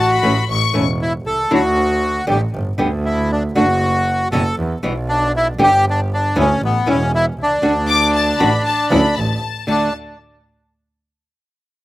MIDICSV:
0, 0, Header, 1, 5, 480
1, 0, Start_track
1, 0, Key_signature, 2, "major"
1, 0, Tempo, 510638
1, 1418, Time_signature, 4, 2, 24, 8
1, 11131, End_track
2, 0, Start_track
2, 0, Title_t, "Violin section"
2, 0, Program_c, 0, 48
2, 112, Note_on_c, 0, 83, 93
2, 439, Note_off_c, 0, 83, 0
2, 463, Note_on_c, 0, 85, 100
2, 794, Note_off_c, 0, 85, 0
2, 7412, Note_on_c, 0, 86, 107
2, 7635, Note_off_c, 0, 86, 0
2, 7653, Note_on_c, 0, 81, 90
2, 7876, Note_off_c, 0, 81, 0
2, 7894, Note_on_c, 0, 83, 92
2, 8130, Note_on_c, 0, 81, 94
2, 8134, Note_off_c, 0, 83, 0
2, 8355, Note_off_c, 0, 81, 0
2, 8369, Note_on_c, 0, 83, 92
2, 8596, Note_off_c, 0, 83, 0
2, 8615, Note_on_c, 0, 81, 82
2, 9082, Note_off_c, 0, 81, 0
2, 9093, Note_on_c, 0, 81, 75
2, 9319, Note_off_c, 0, 81, 0
2, 11131, End_track
3, 0, Start_track
3, 0, Title_t, "Bandoneon"
3, 0, Program_c, 1, 23
3, 0, Note_on_c, 1, 66, 96
3, 420, Note_off_c, 1, 66, 0
3, 960, Note_on_c, 1, 64, 93
3, 1063, Note_off_c, 1, 64, 0
3, 1189, Note_on_c, 1, 69, 99
3, 1431, Note_off_c, 1, 69, 0
3, 1451, Note_on_c, 1, 66, 103
3, 2120, Note_off_c, 1, 66, 0
3, 2164, Note_on_c, 1, 67, 81
3, 2267, Note_off_c, 1, 67, 0
3, 2871, Note_on_c, 1, 64, 87
3, 3113, Note_off_c, 1, 64, 0
3, 3121, Note_on_c, 1, 62, 82
3, 3225, Note_off_c, 1, 62, 0
3, 3345, Note_on_c, 1, 66, 99
3, 4026, Note_off_c, 1, 66, 0
3, 4058, Note_on_c, 1, 69, 99
3, 4283, Note_off_c, 1, 69, 0
3, 4783, Note_on_c, 1, 62, 102
3, 5004, Note_off_c, 1, 62, 0
3, 5046, Note_on_c, 1, 64, 101
3, 5147, Note_off_c, 1, 64, 0
3, 5297, Note_on_c, 1, 67, 118
3, 5501, Note_off_c, 1, 67, 0
3, 5548, Note_on_c, 1, 62, 99
3, 5644, Note_off_c, 1, 62, 0
3, 5770, Note_on_c, 1, 62, 92
3, 5999, Note_off_c, 1, 62, 0
3, 6014, Note_on_c, 1, 61, 98
3, 6219, Note_off_c, 1, 61, 0
3, 6251, Note_on_c, 1, 59, 92
3, 6478, Note_off_c, 1, 59, 0
3, 6479, Note_on_c, 1, 61, 92
3, 6690, Note_off_c, 1, 61, 0
3, 6720, Note_on_c, 1, 64, 107
3, 6822, Note_off_c, 1, 64, 0
3, 6981, Note_on_c, 1, 62, 94
3, 8603, Note_off_c, 1, 62, 0
3, 9125, Note_on_c, 1, 62, 89
3, 9336, Note_off_c, 1, 62, 0
3, 11131, End_track
4, 0, Start_track
4, 0, Title_t, "Nylon-string guitar"
4, 0, Program_c, 2, 24
4, 212, Note_on_c, 2, 52, 97
4, 218, Note_on_c, 2, 57, 99
4, 219, Note_on_c, 2, 61, 93
4, 221, Note_on_c, 2, 64, 88
4, 297, Note_off_c, 2, 52, 0
4, 300, Note_off_c, 2, 57, 0
4, 301, Note_off_c, 2, 61, 0
4, 302, Note_off_c, 2, 64, 0
4, 690, Note_on_c, 2, 52, 78
4, 694, Note_on_c, 2, 57, 82
4, 700, Note_on_c, 2, 61, 84
4, 702, Note_on_c, 2, 64, 85
4, 777, Note_off_c, 2, 52, 0
4, 779, Note_off_c, 2, 57, 0
4, 782, Note_off_c, 2, 61, 0
4, 783, Note_off_c, 2, 64, 0
4, 1416, Note_on_c, 2, 54, 82
4, 1419, Note_on_c, 2, 50, 87
4, 1420, Note_on_c, 2, 57, 85
4, 1422, Note_on_c, 2, 64, 100
4, 1426, Note_on_c, 2, 62, 95
4, 1502, Note_off_c, 2, 54, 0
4, 1503, Note_off_c, 2, 50, 0
4, 1503, Note_off_c, 2, 57, 0
4, 1505, Note_off_c, 2, 64, 0
4, 1507, Note_off_c, 2, 62, 0
4, 2133, Note_on_c, 2, 50, 97
4, 2135, Note_on_c, 2, 55, 96
4, 2135, Note_on_c, 2, 59, 98
4, 2138, Note_on_c, 2, 67, 101
4, 2221, Note_off_c, 2, 50, 0
4, 2222, Note_off_c, 2, 55, 0
4, 2223, Note_off_c, 2, 59, 0
4, 2224, Note_off_c, 2, 67, 0
4, 2612, Note_on_c, 2, 50, 85
4, 2613, Note_on_c, 2, 55, 89
4, 2620, Note_on_c, 2, 59, 89
4, 2622, Note_on_c, 2, 67, 90
4, 2701, Note_off_c, 2, 50, 0
4, 2702, Note_off_c, 2, 55, 0
4, 2705, Note_off_c, 2, 59, 0
4, 2706, Note_off_c, 2, 67, 0
4, 3341, Note_on_c, 2, 50, 88
4, 3342, Note_on_c, 2, 57, 92
4, 3344, Note_on_c, 2, 62, 102
4, 3346, Note_on_c, 2, 66, 95
4, 3426, Note_off_c, 2, 50, 0
4, 3426, Note_off_c, 2, 57, 0
4, 3427, Note_off_c, 2, 62, 0
4, 3428, Note_off_c, 2, 66, 0
4, 4061, Note_on_c, 2, 47, 98
4, 4069, Note_on_c, 2, 52, 87
4, 4069, Note_on_c, 2, 55, 101
4, 4072, Note_on_c, 2, 59, 107
4, 4076, Note_on_c, 2, 64, 101
4, 4145, Note_off_c, 2, 47, 0
4, 4149, Note_off_c, 2, 52, 0
4, 4149, Note_off_c, 2, 55, 0
4, 4151, Note_off_c, 2, 59, 0
4, 4153, Note_off_c, 2, 64, 0
4, 4539, Note_on_c, 2, 47, 87
4, 4540, Note_on_c, 2, 52, 80
4, 4544, Note_on_c, 2, 55, 82
4, 4545, Note_on_c, 2, 59, 90
4, 4549, Note_on_c, 2, 64, 89
4, 4623, Note_off_c, 2, 47, 0
4, 4624, Note_off_c, 2, 52, 0
4, 4626, Note_off_c, 2, 55, 0
4, 4626, Note_off_c, 2, 59, 0
4, 4629, Note_off_c, 2, 64, 0
4, 5249, Note_on_c, 2, 50, 98
4, 5256, Note_on_c, 2, 55, 83
4, 5258, Note_on_c, 2, 59, 106
4, 5259, Note_on_c, 2, 67, 103
4, 5337, Note_off_c, 2, 50, 0
4, 5341, Note_off_c, 2, 55, 0
4, 5342, Note_off_c, 2, 59, 0
4, 5342, Note_off_c, 2, 67, 0
4, 5974, Note_on_c, 2, 52, 96
4, 5977, Note_on_c, 2, 55, 95
4, 5978, Note_on_c, 2, 61, 97
4, 5983, Note_on_c, 2, 64, 112
4, 6059, Note_off_c, 2, 52, 0
4, 6060, Note_off_c, 2, 55, 0
4, 6061, Note_off_c, 2, 61, 0
4, 6063, Note_off_c, 2, 64, 0
4, 6448, Note_on_c, 2, 52, 75
4, 6456, Note_on_c, 2, 55, 82
4, 6458, Note_on_c, 2, 61, 90
4, 6460, Note_on_c, 2, 64, 96
4, 6535, Note_off_c, 2, 52, 0
4, 6539, Note_off_c, 2, 55, 0
4, 6540, Note_off_c, 2, 61, 0
4, 6541, Note_off_c, 2, 64, 0
4, 7163, Note_on_c, 2, 50, 88
4, 7169, Note_on_c, 2, 57, 89
4, 7170, Note_on_c, 2, 62, 104
4, 7173, Note_on_c, 2, 66, 100
4, 7252, Note_off_c, 2, 50, 0
4, 7255, Note_off_c, 2, 57, 0
4, 7255, Note_off_c, 2, 62, 0
4, 7257, Note_off_c, 2, 66, 0
4, 7893, Note_on_c, 2, 50, 97
4, 7897, Note_on_c, 2, 57, 93
4, 7900, Note_on_c, 2, 62, 109
4, 7900, Note_on_c, 2, 66, 105
4, 7977, Note_off_c, 2, 50, 0
4, 7979, Note_off_c, 2, 57, 0
4, 7981, Note_off_c, 2, 62, 0
4, 7981, Note_off_c, 2, 66, 0
4, 8376, Note_on_c, 2, 52, 82
4, 8380, Note_on_c, 2, 61, 87
4, 8382, Note_on_c, 2, 55, 83
4, 8384, Note_on_c, 2, 64, 96
4, 8460, Note_off_c, 2, 52, 0
4, 8462, Note_off_c, 2, 61, 0
4, 8463, Note_off_c, 2, 55, 0
4, 8464, Note_off_c, 2, 64, 0
4, 9090, Note_on_c, 2, 50, 90
4, 9097, Note_on_c, 2, 57, 85
4, 9101, Note_on_c, 2, 62, 91
4, 9102, Note_on_c, 2, 66, 96
4, 9286, Note_off_c, 2, 50, 0
4, 9290, Note_off_c, 2, 57, 0
4, 9292, Note_off_c, 2, 62, 0
4, 9292, Note_off_c, 2, 66, 0
4, 11131, End_track
5, 0, Start_track
5, 0, Title_t, "Double bass"
5, 0, Program_c, 3, 43
5, 0, Note_on_c, 3, 33, 107
5, 181, Note_off_c, 3, 33, 0
5, 211, Note_on_c, 3, 33, 95
5, 414, Note_off_c, 3, 33, 0
5, 447, Note_on_c, 3, 33, 91
5, 653, Note_off_c, 3, 33, 0
5, 688, Note_on_c, 3, 28, 98
5, 1170, Note_off_c, 3, 28, 0
5, 1176, Note_on_c, 3, 36, 63
5, 1412, Note_off_c, 3, 36, 0
5, 1417, Note_on_c, 3, 38, 98
5, 2105, Note_off_c, 3, 38, 0
5, 2131, Note_on_c, 3, 33, 97
5, 2338, Note_off_c, 3, 33, 0
5, 2381, Note_on_c, 3, 31, 94
5, 2583, Note_off_c, 3, 31, 0
5, 2619, Note_on_c, 3, 38, 99
5, 3305, Note_off_c, 3, 38, 0
5, 3340, Note_on_c, 3, 30, 106
5, 4025, Note_off_c, 3, 30, 0
5, 4059, Note_on_c, 3, 30, 97
5, 4261, Note_off_c, 3, 30, 0
5, 4296, Note_on_c, 3, 40, 92
5, 4500, Note_off_c, 3, 40, 0
5, 4536, Note_on_c, 3, 35, 97
5, 5219, Note_off_c, 3, 35, 0
5, 5251, Note_on_c, 3, 31, 106
5, 5937, Note_off_c, 3, 31, 0
5, 5974, Note_on_c, 3, 38, 102
5, 6176, Note_off_c, 3, 38, 0
5, 6201, Note_on_c, 3, 33, 98
5, 6409, Note_off_c, 3, 33, 0
5, 6440, Note_on_c, 3, 28, 105
5, 6924, Note_off_c, 3, 28, 0
5, 6930, Note_on_c, 3, 36, 68
5, 7159, Note_off_c, 3, 36, 0
5, 7165, Note_on_c, 3, 38, 102
5, 7853, Note_off_c, 3, 38, 0
5, 7885, Note_on_c, 3, 33, 91
5, 8091, Note_off_c, 3, 33, 0
5, 8371, Note_on_c, 3, 38, 104
5, 8575, Note_off_c, 3, 38, 0
5, 8616, Note_on_c, 3, 33, 94
5, 8819, Note_off_c, 3, 33, 0
5, 9095, Note_on_c, 3, 38, 59
5, 9297, Note_off_c, 3, 38, 0
5, 11131, End_track
0, 0, End_of_file